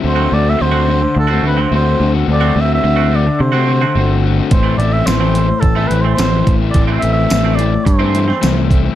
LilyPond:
<<
  \new Staff \with { instrumentName = "Oboe" } { \time 4/4 \key a \dorian \tempo 4 = 107 c''8 d''16 e''16 c''4 a'8 b'16 c''16 c''8. r16 | d''8 e''16 e''8. d''8 c''4. r8 | c''8 d''16 e''16 c''4 a'8 b'16 c''16 c''8. r16 | d''8 e''16 e''8. d''8 c''4. r8 | }
  \new Staff \with { instrumentName = "Overdriven electric guitar" } { \time 4/4 \key a \dorian <d a c' fis'>8 <d a c' fis'>8 <d a c' fis'>8 <d a c' fis'>8. <a c' fis'>16 <d a c' fis'>8 <d a c' fis'>8 <d a c' fis'>16 <a c' fis'>16 | <d a c' fis'>8 <d a c' fis'>8 <d a c' fis'>8 <d a c' fis'>8. <a c' fis'>16 <d a c' fis'>8 <d a c' fis'>8 <d a c' fis'>16 <a c' fis'>16 | <a, e a c' e'>8 <e a c' e'>8 <a, e a c' e'>8 <e a c' e'>8. <a c' e'>16 <e a c' e'>8 <a, e a c' e'>8 <e a c' e'>16 <a c' e'>16 | <a, e a c' e'>8 <e a c' e'>8 <a, e a c' e'>8 <e a c' e'>8. <a c' e'>16 <e a c' e'>8 <a, e a c' e'>8 <e a c' e'>16 <a c' e'>16 | }
  \new Staff \with { instrumentName = "Clean electric guitar" } { \time 4/4 \key a \dorian r16 <a c' fis'>16 r8. <a c' fis'>16 r8. <a c' fis'>16 r16 <a c' fis'>16 r4 | r16 <a c' fis'>16 r8. <a c' fis'>16 r8. <a c' fis'>16 r16 <a c' fis'>16 r4 | r16 <e a c'>16 r8. <e a c'>16 r8. <e a c'>16 r16 <e a c'>16 r4 | r16 <e a c'>16 r8. <e a c'>16 r8. <e a c'>16 r16 <e a c'>16 r4 | }
  \new Staff \with { instrumentName = "Picked electric bass" } { \clef bass \time 4/4 \key a \dorian d,8 d,8 d,4 d,8 d,8 d,8 d,8 | d,8 d,8 d,4 c4 g,,4 | a,,8 a,,8 a,,4 a,,8 a,,8 a,,8 a,,8 | a,,8 a,,8 a,,4 g,4 c,4 | }
  \new DrumStaff \with { instrumentName = "Drums" } \drummode { \time 4/4 r4 r4 r4 r4 | r4 r4 r4 r4 | <hh bd>8 hh8 <hh sn tamb>8 hh8 <hh bd>8 hh8 <hh sn tamb>8 <hh bd>8 | <hh bd>8 hh8 <hh sn tamb>8 hh8 <hh bd>8 hh16 sn16 <hh sn tamb>8 <hh bd>8 | }
>>